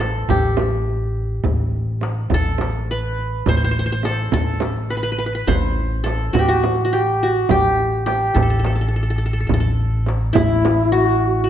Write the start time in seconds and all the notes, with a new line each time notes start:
Already playing: A1 C5
0.00 A4, darbuka tek, frame drum
0.16 darbuka ka
0.29 A1 G4, frame drum, darbuka dum
0.57 darbuka tek, frame drum
0.89 darbuka ka
1.18 darbuka ka
1.44 A1, frame drum, darbuka dum
1.60 darbuka ka
1.75 darbuka ka
2.01 darbuka tek, frame drum
2.18 darbuka ka
2.30 A1, frame drum, darbuka dum
2.34 A4
2.58 darbuka tek, frame drum
2.91 B4, darbuka ka
3.19 darbuka ka
3.46 A1 C5, frame drum, darbuka dum
3.57 C5
3.62 C5, darbuka ka
3.71 C5
3.77 C5, darbuka ka
3.86 C5
3.92 C5
4.03 A4, darbuka tek, frame drum
4.20 darbuka ka
4.32 A1 A4, frame drum, darbuka dum
4.60 darbuka tek, frame drum
4.90 B4, darbuka ka
4.97 B4
5.03 B4
5.12 B4
5.19 B4
5.26 B4
5.35 B4
5.47 A1 C5, frame drum, darbuka dum
5.64 darbuka ka
5.78 darbuka ka
6.04 A4, darbuka tek, frame drum
6.21 darbuka ka
6.33 A1 F#4, darbuka dum, frame drum
6.39 G4
6.48 F#4
6.64 darbuka tek, frame drum
6.85 F#4
6.93 G4, darbuka ka
7.21 F#4, darbuka ka
7.49 A1 G4, frame drum, darbuka dum
7.63 darbuka ka
7.78 darbuka ka
8.06 G4, darbuka tek, frame drum
8.34 A1 A4, darbuka dum, frame drum
8.42 A4
8.50 A4
8.59 A4
8.65 A4, darbuka tek, frame drum
8.75 A4
8.81 A4
8.88 A4
8.94 A4, darbuka ka
9.03 A4
9.10 A4
9.18 A4
9.26 A4
9.33 A4
9.40 A4
9.47 A1 A4, frame drum, darbuka dum
9.54 A4
9.60 A4
9.66 darbuka ka
9.80 darbuka ka
10.06 darbuka tek, frame drum
10.33 A1 E4, frame drum, darbuka dum
10.65 darbuka tek, frame drum
10.92 F#4, darbuka ka
11.22 darbuka ka
11.36 F#4
11.44 F#4